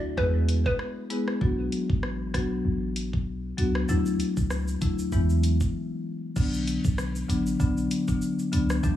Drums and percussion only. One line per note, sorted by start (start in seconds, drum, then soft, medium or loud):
0.18 kick medium
0.49 closed hi-hat medium
0.66 kick medium
0.79 cross-stick medium
1.10 closed hi-hat medium
1.28 cross-stick medium
1.41 kick loud
1.72 closed hi-hat medium
1.90 kick medium
2.03 cross-stick medium
2.34 kick medium
2.34 cross-stick medium
2.34 closed hi-hat medium
2.96 closed hi-hat medium
3.13 kick medium
3.58 closed hi-hat medium
3.75 cross-stick loud
3.89 shaker medium
4.06 shaker medium
4.20 closed hi-hat medium
4.20 shaker soft
4.37 kick medium
4.37 shaker medium
4.50 cross-stick medium
4.50 shaker medium
4.68 shaker medium
4.82 kick medium
4.82 closed hi-hat medium
4.82 shaker medium
4.99 shaker medium
5.12 kick medium
5.12 shaker medium
5.30 shaker soft
5.43 closed hi-hat medium
5.43 shaker medium
5.61 kick medium
5.61 shaker medium
6.36 kick loud
6.36 crash medium
6.36 shaker medium
6.54 shaker medium
6.67 closed hi-hat medium
6.67 shaker soft
6.85 kick medium
6.85 shaker medium
6.98 cross-stick medium
6.98 shaker medium
7.16 shaker medium
7.30 closed hi-hat medium
7.30 shaker medium
7.47 shaker medium
7.60 kick medium
7.60 shaker medium
7.77 shaker soft
7.91 closed hi-hat medium
7.91 shaker medium
8.08 kick medium
8.08 shaker medium
8.22 shaker medium
8.39 shaker soft
8.53 closed hi-hat medium
8.53 shaker medium
8.70 cross-stick loud
8.70 shaker medium
8.84 kick loud
8.84 shaker medium